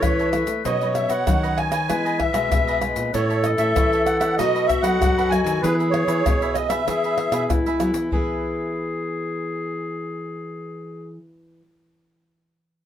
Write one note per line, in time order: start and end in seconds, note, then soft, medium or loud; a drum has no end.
0.00 0.31 E3 medium
0.00 0.43 E3 medium
0.00 0.28 A3 medium
0.00 0.28 C#4 medium
0.00 0.17 A4 medium
0.00 0.64 B4 loud
0.00 0.16 C#5 medium
0.00 0.29 C#5 medium
0.00 0.16 E5 medium
0.00 pandeiro medium
0.00 tamborim medium
0.00 shaker medium
0.00 surdo loud
0.19 0.32 A4 medium
0.19 0.32 C#5 medium
0.19 0.33 E5 medium
0.19 pandeiro soft
0.19 shaker soft
0.32 0.52 E3 medium
0.32 0.52 A3 medium
0.32 0.52 C#4 medium
0.32 0.63 E4 medium
0.32 0.64 A4 medium
0.32 0.64 C#5 medium
0.32 0.64 E5 medium
0.32 pandeiro medium
0.32 tamborim medium
0.32 shaker medium
0.47 0.62 A3 medium
0.47 pandeiro medium
0.47 shaker medium
0.65 1.24 B2 medium
0.65 1.05 B2 loud
0.65 0.76 F#3 medium
0.65 0.76 C#4 medium
0.65 0.76 D#4 medium
0.65 0.79 F#4 soft
0.65 0.80 B4 medium
0.65 1.58 C#5 loud
0.65 0.80 C#5 medium
0.65 0.94 D#5 medium
0.65 0.80 D#5 soft
0.65 pandeiro medium
0.65 shaker medium
0.65 surdo medium
0.81 0.92 F#3 medium
0.81 0.92 C#4 medium
0.81 0.92 D#4 medium
0.81 0.94 B4 medium
0.81 0.94 C#5 medium
0.81 0.94 D#5 medium
0.81 pandeiro soft
0.81 shaker soft
0.95 1.14 F#3 medium
0.95 1.14 C#4 medium
0.95 1.15 D#4 medium
0.95 1.12 E5 medium
0.95 muted cavaquinho stroke soft
0.95 pandeiro medium
0.95 tamborim medium
0.95 shaker medium
1.09 1.24 B2 medium
1.09 1.25 B4 medium
1.09 1.25 C#5 medium
1.09 1.25 D#5 medium
1.09 1.59 F#5 medium
1.09 pandeiro medium
1.09 shaker medium
1.26 1.90 D#3 medium
1.26 1.68 F#3 medium
1.26 1.68 C#4 medium
1.26 1.68 D#4 medium
1.26 1.41 F#4 soft
1.26 1.42 B4 soft
1.26 1.42 C#5 medium
1.26 1.42 D#5 soft
1.26 pandeiro medium
1.26 tamborim medium
1.26 shaker medium
1.26 surdo loud
1.43 1.71 B4 medium
1.43 1.71 C#5 medium
1.43 1.70 D#5 medium
1.43 pandeiro soft
1.43 shaker soft
1.57 1.70 G#5 loud
1.57 pandeiro medium
1.57 tamborim medium
1.71 1.88 B4 medium
1.71 1.87 C#5 medium
1.71 1.87 D#5 medium
1.71 2.21 G#5 loud
1.71 pandeiro medium
1.71 tamborim medium
1.71 shaker medium
1.89 2.49 E3 medium
1.89 2.29 E3 loud
1.89 2.19 G#3 medium
1.89 2.19 B3 medium
1.89 2.19 D#4 medium
1.89 2.03 E4 medium
1.89 2.04 G#4 soft
1.89 3.10 B4 loud
1.89 2.04 B4 medium
1.89 2.04 D#5 medium
1.89 pandeiro medium
1.89 tamborim medium
1.89 shaker medium
1.89 surdo medium
2.05 2.17 G#4 medium
2.05 2.18 B4 medium
2.05 2.18 D#5 medium
2.05 pandeiro soft
2.05 shaker soft
2.18 2.79 E5 medium
2.18 muted cavaquinho stroke soft
2.18 pandeiro medium
2.18 tamborim medium
2.18 surdo medium
2.33 2.48 B2 medium
2.33 2.77 G#3 medium
2.33 2.77 B3 medium
2.33 2.65 G#4 medium
2.33 2.65 B4 medium
2.33 2.64 D#5 medium
2.33 pandeiro medium
2.33 tamborim medium
2.33 shaker medium
2.51 3.11 B2 medium
2.51 2.91 B2 medium
2.51 pandeiro medium
2.51 tamborim medium
2.51 shaker medium
2.51 surdo loud
2.67 2.80 G#4 medium
2.67 2.81 B4 medium
2.67 2.81 D#5 medium
2.67 pandeiro soft
2.67 shaker soft
2.81 3.11 G#3 medium
2.81 3.11 B3 medium
2.81 3.11 D#4 medium
2.81 3.12 E4 medium
2.81 3.12 G#4 medium
2.81 3.12 B4 medium
2.81 pandeiro medium
2.81 tamborim medium
2.81 shaker medium
2.96 3.10 A#2 medium
2.96 pandeiro medium
2.96 shaker medium
3.13 3.73 A2 medium
3.13 3.54 A2 loud
3.13 3.32 E3 medium
3.13 3.33 A3 medium
3.13 3.33 C#4 medium
3.13 3.28 E4 soft
3.13 4.40 A4 loud
3.13 3.28 A4 medium
3.13 3.46 C#5 medium
3.13 3.28 C#5 medium
3.13 3.28 E5 medium
3.13 pandeiro medium
3.13 shaker medium
3.13 surdo medium
3.30 3.43 A4 medium
3.30 3.44 C#5 medium
3.30 3.44 E5 medium
3.30 pandeiro soft
3.30 shaker soft
3.43 3.71 E3 medium
3.43 3.71 A3 medium
3.43 3.71 C#4 medium
3.43 3.51 D#5 medium
3.43 muted cavaquinho stroke soft
3.43 pandeiro medium
3.43 tamborim medium
3.43 shaker medium
3.57 3.73 A2 medium
3.57 3.75 A4 medium
3.57 3.74 C#5 medium
3.57 4.02 E5 medium
3.57 3.74 E5 medium
3.57 pandeiro medium
3.57 shaker medium
3.76 4.34 E3 medium
3.76 4.39 E3 medium
3.76 4.34 A3 medium
3.76 4.34 C#4 medium
3.76 3.91 E4 medium
3.76 3.91 A4 medium
3.76 3.91 C#5 medium
3.76 3.91 E5 medium
3.76 pandeiro medium
3.76 tamborim medium
3.76 shaker medium
3.76 surdo loud
3.92 4.20 A4 medium
3.92 4.19 C#5 medium
3.92 4.19 E5 medium
3.92 pandeiro soft
3.92 shaker soft
4.06 4.17 F#5 medium
4.06 pandeiro medium
4.06 tamborim medium
4.06 shaker medium
4.19 4.36 A4 medium
4.19 4.36 C#5 medium
4.19 4.36 E5 medium
4.19 4.35 F#5 medium
4.19 pandeiro medium
4.19 tamborim medium
4.19 shaker medium
4.37 4.78 B2 loud
4.37 4.98 B2 medium
4.37 4.68 F#3 medium
4.37 4.68 A3 medium
4.37 4.53 D#4 soft
4.37 4.68 D#4 medium
4.37 5.65 F#4 loud
4.37 4.53 A4 medium
4.37 4.53 B4 medium
4.37 4.67 D#5 loud
4.37 4.53 D#5 medium
4.37 pandeiro medium
4.37 tamborim medium
4.37 shaker medium
4.37 surdo medium
4.55 4.67 A4 medium
4.55 4.68 B4 medium
4.55 4.68 D#5 medium
4.55 pandeiro soft
4.55 shaker soft
4.66 4.82 E5 medium
4.66 muted cavaquinho stroke soft
4.66 pandeiro medium
4.66 tamborim medium
4.66 shaker medium
4.66 surdo medium
4.81 4.97 F#3 medium
4.81 5.26 F#3 medium
4.81 5.26 A3 medium
4.81 5.26 D#4 medium
4.81 5.14 A4 medium
4.81 5.14 B4 medium
4.81 5.14 D#5 medium
4.81 5.31 F#5 loud
4.81 pandeiro medium
4.81 tamborim medium
4.81 shaker medium
5.01 5.60 F#2 medium
5.01 5.40 F#3 medium
5.01 pandeiro medium
5.01 tamborim medium
5.01 shaker medium
5.01 surdo loud
5.17 5.30 A4 medium
5.17 5.31 B4 medium
5.17 5.31 D#5 medium
5.17 pandeiro soft
5.17 shaker soft
5.29 5.60 F#3 medium
5.29 5.60 A3 medium
5.29 5.61 D#4 soft
5.29 5.60 D#4 medium
5.29 5.61 A4 medium
5.29 5.62 B4 medium
5.29 5.62 D#5 medium
5.29 5.41 G#5 loud
5.29 pandeiro medium
5.29 tamborim medium
5.29 shaker medium
5.43 5.59 D#3 medium
5.43 5.61 G#5 medium
5.43 pandeiro medium
5.43 shaker medium
5.61 6.22 E3 medium
5.61 6.03 E3 loud
5.61 5.89 B3 medium
5.61 5.89 E4 medium
5.61 5.78 E4 soft
5.61 6.61 G#4 medium
5.61 5.89 G#4 medium
5.61 5.78 G#4 medium
5.61 5.76 B4 loud
5.61 5.78 B4 medium
5.61 5.78 E5 medium
5.61 pandeiro medium
5.61 shaker medium
5.61 surdo medium
5.79 5.92 G#4 medium
5.79 5.92 B4 medium
5.79 5.93 E5 medium
5.79 pandeiro soft
5.79 shaker soft
5.90 6.19 B3 medium
5.90 6.20 E4 medium
5.90 6.20 G#4 medium
5.90 6.56 C#5 loud
5.90 muted cavaquinho stroke soft
5.90 pandeiro medium
5.90 tamborim medium
6.07 6.22 E3 medium
6.07 6.23 G#4 medium
6.07 6.23 B4 medium
6.07 6.23 E5 medium
6.07 pandeiro medium
6.07 shaker medium
6.25 6.84 B2 medium
6.25 6.88 B2 medium
6.25 6.67 B3 medium
6.25 6.39 E4 soft
6.25 6.67 E4 medium
6.25 6.40 G#4 medium
6.25 6.67 G#4 medium
6.25 6.40 B4 medium
6.25 6.40 E5 medium
6.25 pandeiro medium
6.25 tamborim medium
6.25 shaker medium
6.25 surdo loud
6.42 6.70 G#4 medium
6.42 6.69 B4 medium
6.42 6.68 E5 medium
6.42 pandeiro soft
6.42 shaker soft
6.53 6.69 D#5 medium
6.53 pandeiro medium
6.53 tamborim medium
6.53 shaker medium
6.68 6.81 B3 medium
6.68 6.81 E4 medium
6.68 6.81 G#4 medium
6.68 6.86 G#4 medium
6.68 6.85 B4 medium
6.68 7.44 E5 medium
6.68 6.85 E5 medium
6.68 pandeiro medium
6.68 tamborim medium
6.68 shaker medium
6.87 7.47 E3 medium
6.87 7.27 E3 loud
6.87 7.29 B3 medium
6.87 7.02 E4 medium
6.87 7.29 E4 medium
6.87 7.52 G#4 medium
6.87 7.02 G#4 soft
6.87 7.30 G#4 medium
6.87 7.02 B4 soft
6.87 7.03 E5 medium
6.87 pandeiro medium
6.87 tamborim medium
6.87 shaker medium
6.87 surdo medium
7.04 7.17 G#4 medium
7.04 7.18 B4 medium
7.04 7.18 E5 medium
7.04 pandeiro soft
7.04 shaker soft
7.18 muted cavaquinho stroke soft
7.18 pandeiro medium
7.18 tamborim medium
7.32 7.46 B2 medium
7.32 7.75 B3 medium
7.32 7.75 E4 medium
7.32 7.75 G#4 medium
7.32 7.64 G#4 medium
7.32 7.64 B4 medium
7.32 7.63 E5 medium
7.32 pandeiro medium
7.32 tamborim medium
7.32 shaker medium
7.50 8.09 B2 medium
7.50 7.64 B3 medium
7.50 8.12 E4 medium
7.50 pandeiro medium
7.50 tamborim medium
7.50 shaker medium
7.50 surdo loud
7.66 7.80 G#3 medium
7.66 7.79 G#4 medium
7.66 7.80 B4 medium
7.66 7.80 E5 medium
7.66 pandeiro soft
7.66 shaker soft
7.80 7.94 F#3 medium
7.80 8.06 B3 medium
7.80 8.07 E4 medium
7.80 8.10 E4 soft
7.80 8.07 G#4 medium
7.80 8.11 G#4 soft
7.80 8.11 B4 medium
7.80 8.11 E5 medium
7.80 pandeiro medium
7.80 tamborim medium
7.80 shaker medium
7.94 8.09 E3 medium
7.94 pandeiro medium
7.94 shaker medium
8.11 11.61 E3 medium
8.11 11.18 E3 medium
8.11 11.63 B3 medium
8.11 11.62 E4 medium
8.11 11.18 G#4 medium
8.11 11.63 G#4 medium
8.11 11.64 B4 medium
8.11 11.65 E5 medium
8.11 surdo loud
8.15 11.65 E4 medium
8.15 11.67 G#4 medium